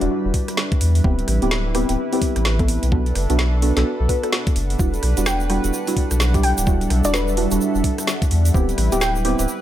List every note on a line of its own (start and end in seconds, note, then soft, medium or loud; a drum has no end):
0.00 0.09 E1 medium
0.00 1.80 G3 medium
0.00 2.88 G3 medium
0.00 1.02 G3 medium
0.00 1.01 D4 medium
0.00 1.81 D4 medium
0.00 1.02 D4 medium
0.00 1.02 E4 medium
0.00 1.02 F#4 medium
0.00 4.76 B4 medium
0.00 3.68 E5 medium
0.00 1.01 F#5 medium
0.00 closed hi-hat medium
0.25 0.32 E1 medium
0.34 kick medium
0.34 open hi-hat loud
0.48 cross-stick medium
0.48 closed hi-hat medium
0.57 snare loud
0.72 kick loud
0.72 closed hi-hat soft
0.81 1.01 E2 loud
0.81 open hi-hat loud
0.95 open hi-hat medium
1.04 1.25 D1 loud
1.04 1.13 B3 medium
1.04 1.13 C4 medium
1.04 1.13 E4 medium
1.04 2.90 E4 medium
1.04 1.13 G4 medium
1.04 kick loud
1.19 closed hi-hat soft
1.28 1.40 A1 loud
1.28 3.68 B4 medium
1.28 cross-stick medium
1.28 open hi-hat loud
1.42 1.85 D1 medium
1.42 1.48 B3 medium
1.42 1.48 C4 medium
1.42 1.48 E4 medium
1.42 1.48 G4 medium
1.42 closed hi-hat medium
1.51 snare loud
1.75 1.87 B3 medium
1.75 1.87 C4 medium
1.75 1.87 E4 medium
1.75 1.87 G4 loud
1.75 cross-stick medium
1.75 open hi-hat loud
1.85 1.97 D1 medium
1.85 1.95 B3 medium
1.85 1.95 C4 medium
1.85 1.95 E4 medium
1.85 1.95 G4 medium
1.85 2.92 G5 medium
1.85 closed hi-hat medium
2.12 2.56 B3 medium
2.12 2.56 C4 medium
2.12 2.56 E4 medium
2.12 2.56 G4 loud
2.12 open hi-hat medium
2.22 kick medium
2.22 open hi-hat loud
2.36 2.79 A1 loud
2.36 cross-stick medium
2.36 closed hi-hat medium
2.45 snare loud
2.59 2.90 B3 medium
2.59 2.90 C4 medium
2.59 2.90 E4 medium
2.59 2.90 A4 medium
2.59 kick loud
2.59 closed hi-hat soft
2.68 open hi-hat loud
2.83 3.13 B1 medium
2.83 closed hi-hat medium
2.92 3.01 B3 medium
2.92 5.86 B3 medium
2.92 3.01 D4 medium
2.92 8.51 D4 medium
2.92 3.01 F#4 medium
2.92 3.01 A4 medium
2.92 4.78 A4 medium
2.92 8.51 F#5 medium
2.92 kick loud
3.02 5.75 A4 medium
3.06 closed hi-hat soft
3.15 3.27 F#1 loud
3.15 cross-stick soft
3.15 open hi-hat medium
3.30 3.72 B1 medium
3.30 3.35 B3 medium
3.30 3.35 D4 medium
3.30 3.35 F#4 medium
3.30 3.35 A4 medium
3.30 closed hi-hat medium
3.39 snare loud
3.62 3.71 B3 medium
3.62 3.71 D4 medium
3.62 3.71 F#4 medium
3.62 3.71 A4 medium
3.62 open hi-hat loud
3.77 3.84 B1 medium
3.77 4.07 B3 medium
3.77 4.07 D4 medium
3.77 4.07 F#4 medium
3.77 4.07 A4 medium
3.77 5.65 D5 medium
3.77 8.55 F#5 medium
3.77 snare medium
3.77 closed hi-hat medium
4.00 4.08 B1 medium
4.09 4.18 B3 medium
4.09 4.18 D4 medium
4.09 4.18 F#4 medium
4.09 4.18 B4 loud
4.09 kick medium
4.09 open hi-hat loud
4.23 4.29 B3 medium
4.23 4.29 D4 medium
4.23 4.29 F#4 medium
4.23 4.29 A4 loud
4.23 cross-stick medium
4.23 closed hi-hat medium
4.33 snare loud
4.47 kick loud
4.47 closed hi-hat medium
4.56 4.76 F#1 loud
4.56 open hi-hat loud
4.70 open hi-hat medium
4.79 5.00 E1 medium
4.79 4.88 G3 medium
4.79 9.62 G3 medium
4.79 4.88 D4 medium
4.79 9.20 D4 medium
4.79 4.88 E4 medium
4.79 4.89 F#4 medium
4.79 6.65 B4 medium
4.79 kick loud
4.79 shaker medium
4.89 9.30 G3 medium
4.94 closed hi-hat soft
4.94 shaker soft
5.03 5.15 B1 loud
5.03 cross-stick soft
5.03 open hi-hat medium
5.17 5.60 E1 medium
5.17 5.23 G3 medium
5.17 5.23 D4 medium
5.17 5.23 E4 medium
5.17 5.23 F#4 medium
5.17 closed hi-hat medium
5.17 shaker medium
5.26 5.48 G5 medium
5.26 snare loud
5.26 shaker medium
5.40 shaker soft
5.50 5.62 G3 loud
5.50 5.62 D4 medium
5.50 5.62 E4 medium
5.50 5.62 F#4 loud
5.50 cross-stick medium
5.50 open hi-hat loud
5.64 5.72 E1 medium
5.64 5.70 G3 medium
5.64 5.70 D4 medium
5.64 5.70 E4 medium
5.64 5.70 F#4 medium
5.64 closed hi-hat medium
5.64 shaker medium
5.73 shaker medium
5.79 9.62 E5 medium
5.87 6.31 G3 medium
5.87 6.31 D4 medium
5.87 6.31 E4 medium
5.87 6.31 F#4 loud
5.87 open hi-hat medium
5.87 shaker soft
5.97 kick medium
5.97 open hi-hat loud
6.11 6.54 B1 loud
6.11 cross-stick medium
6.11 closed hi-hat medium
6.11 shaker medium
6.20 snare loud
6.20 shaker medium
6.34 6.65 G3 medium
6.34 6.65 D4 medium
6.34 6.65 E4 medium
6.34 6.65 G4 medium
6.34 kick loud
6.34 closed hi-hat medium
6.34 shaker soft
6.43 6.65 G5 medium
6.43 open hi-hat loud
6.58 6.88 D1 medium
6.58 closed hi-hat medium
6.58 shaker medium
6.67 6.76 G3 medium
6.67 6.76 D4 medium
6.67 6.76 E4 medium
6.67 6.76 F#4 medium
6.67 8.53 A4 medium
6.67 kick loud
6.67 shaker medium
6.81 closed hi-hat soft
6.81 shaker soft
6.90 7.02 B1 loud
6.90 cross-stick soft
6.90 open hi-hat loud
7.04 7.47 E1 medium
7.04 7.10 G3 medium
7.04 7.10 D4 medium
7.04 7.10 E4 medium
7.04 7.10 F#4 medium
7.04 7.12 D5 medium
7.04 closed hi-hat medium
7.04 shaker medium
7.14 7.52 B4 medium
7.14 snare loud
7.14 shaker medium
7.28 shaker soft
7.37 7.46 G3 medium
7.37 7.46 D4 medium
7.37 7.46 E4 medium
7.37 7.46 F#4 medium
7.37 open hi-hat loud
7.51 7.59 E1 medium
7.51 8.52 G3 medium
7.51 8.52 D4 medium
7.51 8.52 E4 medium
7.51 8.52 F#4 medium
7.51 closed hi-hat medium
7.51 shaker medium
7.61 shaker medium
7.75 7.82 E1 medium
7.75 shaker soft
7.84 kick medium
7.84 open hi-hat loud
7.98 cross-stick soft
7.98 closed hi-hat medium
7.98 shaker medium
8.07 snare loud
8.07 shaker medium
8.22 kick loud
8.22 closed hi-hat medium
8.22 shaker soft
8.31 8.51 E2 loud
8.31 open hi-hat loud
8.45 open hi-hat medium
8.45 shaker medium
8.54 8.75 D1 loud
8.54 8.63 B3 medium
8.54 8.63 C4 medium
8.54 8.63 E4 medium
8.54 9.62 E4 medium
8.54 8.63 G4 medium
8.54 9.62 B4 medium
8.54 kick loud
8.54 shaker medium
8.69 closed hi-hat soft
8.69 shaker soft
8.77 8.90 A1 loud
8.77 9.62 G5 medium
8.77 cross-stick soft
8.77 open hi-hat loud
8.92 9.35 D1 medium
8.92 8.98 B3 medium
8.92 8.98 C4 medium
8.92 8.98 E4 medium
8.92 8.98 G4 medium
8.92 9.62 B4 medium
8.92 closed hi-hat medium
8.92 shaker medium
9.01 9.23 G5 medium
9.01 snare loud
9.01 shaker medium
9.16 shaker soft
9.25 9.37 B3 loud
9.25 9.37 C4 medium
9.25 9.37 E4 medium
9.25 9.37 G4 loud
9.25 open hi-hat loud
9.39 9.46 D1 medium
9.39 9.45 B3 medium
9.39 9.45 C4 medium
9.39 9.45 E4 medium
9.39 9.45 G4 medium
9.39 closed hi-hat medium
9.39 shaker medium
9.48 shaker medium